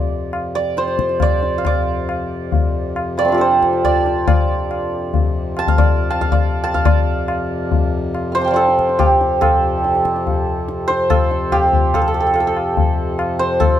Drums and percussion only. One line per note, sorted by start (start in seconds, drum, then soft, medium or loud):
0.33 tabla na medium
0.77 tabla te medium
0.88 tabla te medium
0.99 tabla ke medium
1.09 tabla te medium
1.20 tabla na medium
1.20 tabla ge medium
1.42 tabla te medium
1.65 tabla na loud
1.65 tabla ge medium
2.09 tabla na medium
2.52 tabla tin medium
2.52 tabla ge medium
2.96 tabla na medium
3.18 tabla na medium
3.40 tabla te medium
3.51 tabla te medium
3.62 tabla ke medium
3.73 tabla te medium
3.84 tabla na medium
3.84 tabla ge medium
4.06 tabla te medium
4.28 tabla na loud
4.28 tabla ge medium
4.71 tabla na medium
5.14 tabla tin medium
5.14 tabla ge medium
5.57 tabla na medium
5.67 tabla tin medium
5.67 tabla ge medium
5.78 tabla na medium
5.78 tabla ge medium
6.11 tabla na medium
6.21 tabla tin medium
6.21 tabla ge medium
6.32 tabla na medium
6.32 tabla ge medium
6.64 tabla na medium
6.75 tabla tin medium
6.75 tabla ge medium
6.86 tabla na loud
6.86 tabla ge medium
7.28 tabla na medium
7.72 tabla tin medium
7.72 tabla ge medium
8.15 tabla na medium
8.57 tabla te medium
8.68 tabla te medium
8.79 tabla ke medium
8.89 tabla te medium
9.00 tabla na medium
9.00 tabla ge medium
9.21 tabla te medium
9.42 tabla na loud
9.42 tabla ge medium
9.84 tabla te medium
9.95 tabla te medium
10.05 tabla ke medium
10.16 tabla te medium
10.27 tabla tin medium
10.27 tabla ge medium
10.68 tabla te medium
10.90 tabla te medium
11.10 tabla na medium
11.10 tabla ge medium
11.31 tabla te medium
11.52 tabla na medium
11.52 tabla ge medium
11.73 tabla ge medium
11.94 tabla na loud
11.94 tabla ge medium
12.36 tabla na medium
12.57 tabla na medium
12.77 tabla tin medium
12.77 tabla ge medium
13.19 tabla na medium
13.40 tabla na medium
13.61 tabla na medium
13.61 tabla ge medium